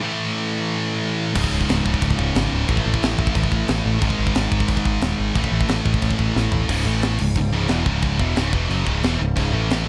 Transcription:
0.01 1.33 A2 medium
0.01 1.35 E3 loud
0.01 1.35 A3 loud
1.34 1.46 C#1 loud
1.34 2.67 C#2 medium
1.34 2.68 G#2 medium
1.34 2.69 C#3 medium
1.34 kick loud
1.34 china medium
1.34 crash loud
1.44 kick medium
1.52 1.63 C#1 medium
1.61 kick medium
1.69 1.80 C#1 medium
1.69 snare loud
1.69 china medium
1.86 1.96 C#1 loud
1.86 kick medium
1.94 kick medium
2.02 2.13 C#1 medium
2.02 kick loud
2.02 china medium
2.10 kick medium
2.19 2.30 C#1 medium
2.19 kick medium
2.35 2.46 G#1 loud
2.35 snare loud
2.35 china medium
2.53 2.63 C#1 loud
2.68 2.80 A1 medium
2.68 4.00 A2 medium
2.68 4.02 E3 medium
2.68 4.02 A3 loud
2.68 kick loud
2.68 china medium
2.77 kick medium
2.86 2.97 A1 loud
2.94 kick medium
3.03 3.13 A1 medium
3.03 snare loud
3.03 china medium
3.19 3.29 A1 loud
3.19 kick medium
3.27 kick loud
3.35 3.46 A1 medium
3.35 kick loud
3.35 china medium
3.43 kick medium
3.52 3.63 A1 loud
3.52 kick medium
3.68 3.80 A1 loud
3.68 snare loud
3.68 china medium
3.86 3.97 A1 medium
4.00 4.13 G#1 loud
4.00 5.34 G#2 medium
4.00 5.35 D#3 loud
4.00 5.36 G#3 loud
4.00 kick loud
4.00 china medium
4.10 kick medium
4.19 4.30 G#1 loud
4.27 kick medium
4.35 4.47 G#1 medium
4.35 snare loud
4.35 china medium
4.52 4.63 G#1 loud
4.52 kick loud
4.60 kick medium
4.68 4.80 G#1 medium
4.68 kick loud
4.68 china medium
4.77 kick medium
4.85 4.96 G#1 medium
4.85 kick medium
5.01 5.13 D#1 loud
5.01 snare loud
5.01 china medium
5.20 5.30 G#1 medium
5.35 5.47 A1 medium
5.35 6.68 A2 medium
5.35 6.69 E3 medium
5.35 6.69 A3 loud
5.35 kick loud
5.35 china medium
5.44 kick medium
5.52 5.63 A1 medium
5.61 kick medium
5.68 5.80 A1 medium
5.68 snare loud
5.68 china medium
5.85 5.96 A1 loud
5.85 kick medium
5.94 kick loud
6.02 6.13 A1 medium
6.02 kick loud
6.02 china medium
6.11 kick medium
6.19 6.30 A1 medium
6.19 kick medium
6.36 6.47 A1 loud
6.36 snare medium
6.52 6.63 A1 medium
6.52 floor tom loud
6.69 6.85 C#1 medium
6.69 6.85 C#2 medium
6.69 6.85 G#2 loud
6.69 6.86 C#3 loud
6.69 kick loud
6.69 crash loud
6.69 china medium
6.85 7.17 A1 loud
6.85 7.19 A2 medium
6.85 7.19 E3 loud
6.85 7.19 A3 loud
7.02 snare loud
7.02 china medium
7.18 7.35 C#1 medium
7.18 7.33 C#2 medium
7.18 7.33 G#2 medium
7.18 crash loud
7.35 7.52 C#1 medium
7.35 7.50 C#2 medium
7.35 7.50 G#2 medium
7.35 kick loud
7.35 china medium
7.52 7.68 C#1 loud
7.52 7.68 C#2 medium
7.52 7.69 G#2 medium
7.52 7.70 C#3 loud
7.68 7.85 E1 loud
7.68 7.85 E2 medium
7.68 7.86 B2 medium
7.68 7.86 E3 loud
7.68 snare loud
7.68 china medium
7.85 8.17 C#1 medium
7.85 8.19 C#2 medium
7.85 8.19 G#2 loud
7.85 8.20 C#3 medium
7.85 kick loud
8.02 kick loud
8.02 china medium
8.19 8.35 E1 loud
8.19 8.36 E2 loud
8.19 8.36 B2 loud
8.19 8.36 E3 loud
8.19 kick medium
8.36 8.52 C#1 medium
8.36 8.52 C#2 medium
8.36 8.52 G#2 loud
8.36 8.53 C#3 loud
8.36 snare loud
8.36 china medium
8.52 8.69 E1 loud
8.52 8.69 E2 loud
8.52 8.69 B2 loud
8.52 8.70 E3 loud
8.52 kick loud
8.69 8.85 F#1 medium
8.69 8.85 F#2 medium
8.69 8.86 C#3 medium
8.69 8.86 F#3 medium
8.69 china medium
8.85 9.02 C#1 loud
8.85 9.02 C#2 medium
8.85 9.03 G#2 loud
8.85 9.03 C#3 loud
8.85 kick loud
9.03 9.19 E1 loud
9.03 9.19 E2 medium
9.03 9.20 B2 medium
9.03 9.20 E3 medium
9.03 snare loud
9.03 china medium
9.20 9.35 C#1 medium
9.20 9.33 C#2 medium
9.20 9.34 G#2 medium
9.36 9.52 C#1 medium
9.36 9.52 C#2 loud
9.36 9.52 G#2 loud
9.36 9.53 C#3 loud
9.36 kick loud
9.36 china medium
9.52 9.84 A1 loud
9.52 9.85 A2 medium
9.52 9.86 E3 loud
9.52 9.86 A3 medium
9.70 snare loud
9.70 china medium

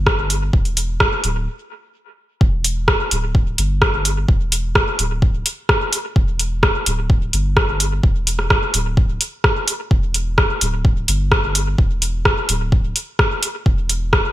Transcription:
0.00 0.50 G1 medium
0.07 kick loud
0.07 cross-stick medium
0.30 open hi-hat medium
0.53 1.09 E1 loud
0.53 kick loud
0.65 open hi-hat soft
0.77 open hi-hat medium
1.00 kick loud
1.00 cross-stick medium
1.24 1.47 D1 loud
1.24 open hi-hat medium
2.41 2.96 E1 loud
2.41 kick loud
2.64 open hi-hat medium
2.88 kick loud
2.88 cross-stick medium
3.11 3.55 D1 loud
3.11 open hi-hat medium
3.35 kick loud
3.58 4.25 G1 medium
3.58 open hi-hat medium
3.82 kick loud
3.82 cross-stick medium
4.05 open hi-hat medium
4.28 4.84 E1 loud
4.28 kick loud
4.52 open hi-hat medium
4.75 kick loud
4.75 cross-stick medium
4.99 5.42 D1 loud
4.99 open hi-hat medium
5.22 kick loud
5.46 open hi-hat medium
5.69 kick loud
5.69 cross-stick medium
5.93 open hi-hat medium
6.16 6.71 E1 loud
6.16 kick loud
6.39 open hi-hat medium
6.63 kick loud
6.63 cross-stick medium
6.86 7.30 D1 loud
6.86 open hi-hat medium
7.10 kick loud
7.33 8.00 G1 medium
7.33 open hi-hat medium
7.57 kick loud
7.57 cross-stick medium
7.80 open hi-hat medium
8.03 8.59 E1 loud
8.03 kick loud
8.27 open hi-hat medium
8.39 cross-stick soft
8.50 kick loud
8.50 cross-stick medium
8.74 9.17 D1 loud
8.74 open hi-hat medium
8.97 kick loud
9.21 open hi-hat medium
9.44 kick loud
9.44 cross-stick medium
9.68 open hi-hat medium
9.91 10.46 E1 loud
9.91 kick loud
10.14 open hi-hat medium
10.38 kick loud
10.38 cross-stick medium
10.61 11.05 D1 loud
10.61 open hi-hat medium
10.85 kick loud
11.08 11.75 G1 medium
11.08 open hi-hat medium
11.32 kick loud
11.32 cross-stick medium
11.55 open hi-hat medium
11.78 12.34 E1 loud
11.78 kick loud
12.02 open hi-hat medium
12.25 kick loud
12.25 cross-stick medium
12.49 12.92 D1 loud
12.49 open hi-hat medium
12.72 kick loud
12.96 open hi-hat medium
13.19 kick loud
13.19 cross-stick medium
13.43 open hi-hat medium
13.66 14.21 E1 loud
13.66 kick loud
13.89 open hi-hat medium
14.13 kick loud
14.13 cross-stick medium

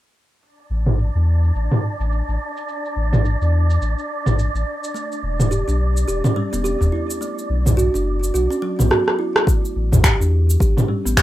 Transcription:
0.41 8.90 D4 medium
0.41 8.90 D5 medium
0.41 cabasa soft
0.59 cabasa soft
0.70 1.10 A1 medium
0.86 mid tom medium
0.86 cabasa medium
0.99 cabasa soft
1.15 1.51 E2 medium
1.15 cabasa soft
1.44 cabasa medium
1.55 1.68 A1 medium
1.55 cabasa medium
1.72 mid tom medium
1.72 cabasa soft
1.99 2.22 A1 medium
1.99 cabasa medium
2.12 cabasa soft
2.28 2.38 A1 medium
2.28 cabasa soft
2.57 cabasa medium
2.69 cabasa medium
2.85 cabasa soft
2.96 3.36 A1 medium
3.13 mid tom medium
3.13 cabasa medium
3.25 cabasa soft
3.41 3.78 E2 medium
3.41 cabasa soft
3.70 cabasa medium
3.81 3.95 A1 medium
3.81 cabasa medium
3.99 cabasa soft
4.26 4.48 A1 medium
4.26 mid tom medium
4.26 cabasa medium
4.39 cabasa soft
4.54 4.64 A1 medium
4.54 cabasa soft
4.84 cabasa medium
4.94 5.04 A3 medium
4.94 cabasa soft
5.12 cabasa soft
5.23 5.63 E1 medium
5.40 mid tom medium
5.40 cabasa medium
5.51 5.67 G4 medium
5.51 cabasa medium
5.68 6.04 B1 loud
5.68 5.79 D4 medium
5.68 cabasa soft
5.97 cabasa medium
6.08 6.21 E1 medium
6.08 6.23 G4 medium
6.08 cabasa medium
6.24 6.35 C#4 medium
6.24 mid tom medium
6.24 cabasa soft
6.36 6.46 G3 loud
6.53 6.75 E1 medium
6.53 6.64 B3 medium
6.53 cabasa medium
6.64 6.80 G4 medium
6.64 cabasa medium
6.81 6.90 E1 medium
6.81 udu loud
6.81 cabasa soft
6.92 7.08 E4 medium
7.10 cabasa medium
7.21 7.30 A3 medium
7.21 cabasa soft
7.39 cabasa soft
7.49 7.89 B1 medium
7.65 mid tom medium
7.65 udu medium
7.65 cabasa medium
7.77 7.93 F#4 loud
7.77 cabasa soft
7.94 8.31 F#1 loud
7.94 8.05 D4 medium
7.94 cabasa soft
8.24 cabasa medium
8.34 8.48 B1 medium
8.34 8.49 F#4 medium
8.34 cabasa medium
8.51 8.62 C#4 medium
8.51 cabasa soft
8.62 8.72 F#3 loud
8.79 8.91 B1 medium
8.79 8.90 B3 medium
8.79 mid tom medium
8.79 cabasa medium
8.91 9.07 F#4 medium
8.91 cross-stick medium
9.08 cross-stick medium
9.19 9.35 E4 medium
9.36 cross-stick medium
9.47 9.57 A3 medium
9.47 kick loud
9.47 cabasa medium
9.65 cabasa soft
9.76 10.16 A1 loud
9.92 mid tom medium
9.92 udu medium
9.92 cabasa medium
10.04 10.20 G4 medium
10.04 finger snap medium
10.04 kick loud
10.04 cabasa medium
10.20 10.57 E2 loud
10.20 10.31 D4 medium
10.20 cabasa soft
10.50 cabasa medium
10.60 10.74 A1 medium
10.60 10.75 G4 medium
10.60 kick loud
10.60 cabasa medium
10.77 10.88 C#4 medium
10.77 mid tom medium
10.77 cabasa soft
10.88 10.98 G3 loud
11.05 11.22 A1 medium
11.05 11.17 B3 medium
11.05 cabasa medium
11.17 11.22 G4 medium
11.17 finger snap medium
11.17 kick medium
11.17 cabasa medium

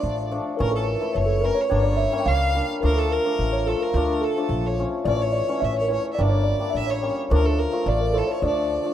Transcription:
0.00 0.37 A1 medium
0.00 0.30 F3 medium
0.00 0.11 A3 medium
0.00 0.11 D4 medium
0.00 0.28 D5 medium
0.00 0.33 D5 medium
0.31 0.65 F3 medium
0.31 0.46 A3 medium
0.31 0.46 D4 medium
0.55 0.99 E3 medium
0.55 0.80 A3 medium
0.55 0.73 A#4 medium
0.55 0.59 C#5 soft
0.60 0.94 A1 loud
0.60 0.81 C#4 medium
0.60 0.73 A#4 medium
0.71 0.87 A4 medium
0.76 1.18 A4 medium
0.85 1.15 A#4 medium
1.01 1.42 E3 medium
1.01 1.22 A3 medium
1.01 1.23 E4 medium
1.14 1.49 F#1 medium
1.14 1.29 C#5 medium
1.14 1.46 C#5 medium
1.26 1.42 A4 medium
1.41 1.76 E3 medium
1.41 1.57 A3 medium
1.41 1.57 C#4 medium
1.41 1.57 A#4 medium
1.41 1.62 A#4 medium
1.55 1.69 C#5 medium
1.61 1.73 C#5 medium
1.69 2.05 G1 medium
1.69 2.11 G3 medium
1.69 1.92 A#3 medium
1.69 1.92 D4 medium
1.69 1.83 C#5 medium
1.69 2.29 C#5 medium
1.83 1.98 D5 medium
1.97 2.20 E5 medium
2.12 2.54 G3 medium
2.12 2.34 A#3 medium
2.12 2.34 C#4 medium
2.20 2.27 G5 medium
2.26 2.60 C#2 medium
2.26 2.65 F5 medium
2.26 2.69 F5 medium
2.55 2.88 G3 medium
2.55 2.69 A#3 medium
2.55 2.69 D4 medium
2.81 3.17 D2 medium
2.81 3.23 F3 medium
2.81 3.04 A3 medium
2.81 3.04 D4 medium
2.81 2.96 A#4 medium
2.85 3.00 A#4 medium
2.96 3.11 A4 medium
2.96 3.13 A4 medium
3.11 3.54 A#4 medium
3.11 3.69 A#4 medium
3.24 3.66 F3 medium
3.24 3.46 A3 medium
3.24 3.46 D4 medium
3.39 3.72 A1 medium
3.53 3.67 C#5 medium
3.67 3.94 F3 medium
3.67 3.81 A3 medium
3.67 3.81 F4 medium
3.67 3.81 A4 medium
3.67 3.84 A4 medium
3.80 4.24 A#4 medium
3.80 4.25 A#4 medium
3.94 4.28 D2 loud
3.94 4.35 F3 medium
3.94 4.16 A3 medium
3.94 4.16 D4 medium
4.21 4.74 A4 medium
4.21 4.68 A4 medium
4.37 4.77 F3 medium
4.37 4.58 A3 medium
4.37 4.58 D4 medium
4.49 4.83 A#1 medium
4.66 4.79 C#5 medium
4.78 5.11 F3 medium
4.78 4.93 A3 medium
4.78 4.93 C#4 medium
5.05 5.39 A1 loud
5.05 5.47 E3 medium
5.05 5.27 A3 medium
5.05 5.28 C#4 medium
5.05 5.18 D5 loud
5.05 5.23 D5 medium
5.17 5.32 C#5 medium
5.21 5.65 C#5 medium
5.32 5.62 D5 medium
5.48 5.88 E3 medium
5.48 5.69 A3 medium
5.48 5.70 C#4 medium
5.60 5.96 A1 medium
5.60 5.76 E5 medium
5.60 5.77 E5 medium
5.73 5.81 C#5 medium
5.79 5.89 A#4 medium
5.79 5.91 C#5 medium
5.89 6.23 E3 medium
5.89 6.04 A3 medium
5.89 6.05 C#4 medium
5.89 6.03 C#5 medium
5.93 6.05 C#5 medium
6.13 6.30 D5 medium
6.13 6.22 E5 medium
6.18 6.52 G1 loud
6.18 6.58 G3 medium
6.18 6.39 A#3 medium
6.18 6.40 D4 medium
6.18 6.78 D5 medium
6.29 6.44 C#5 medium
6.44 6.74 D5 medium
6.60 7.01 G3 medium
6.60 6.81 A#3 medium
6.60 6.82 D4 medium
6.70 6.85 E5 medium
6.75 7.08 A1 medium
6.75 6.92 E5 medium
6.87 7.14 C#5 medium
6.87 7.17 C#5 medium
7.02 7.36 G3 medium
7.02 7.17 A#3 medium
7.02 7.17 C#4 medium
7.30 7.65 D2 loud
7.30 7.71 F3 medium
7.30 7.52 A3 medium
7.30 7.52 D4 medium
7.30 7.46 A#4 medium
7.34 7.47 A#4 medium
7.45 7.60 A4 medium
7.58 7.89 A#4 medium
7.58 7.85 A#4 medium
7.72 8.12 F3 medium
7.72 7.94 A3 medium
7.72 7.94 F4 medium
7.86 8.20 A1 loud
7.86 8.00 D5 medium
7.86 8.19 D5 medium
8.01 8.14 A#4 medium
8.13 8.41 F3 medium
8.13 8.29 A3 medium
8.13 8.29 E4 medium
8.13 8.27 A4 medium
8.18 8.32 A4 medium
8.27 8.41 C#5 medium
8.27 8.44 C#5 medium
8.42 8.76 D2 medium
8.42 8.83 F3 medium
8.42 8.64 A3 medium
8.42 8.64 D4 medium
8.42 8.94 D5 medium
8.47 8.94 D5 medium
8.84 8.94 F3 medium
8.84 8.94 A3 medium
8.84 8.94 D4 medium

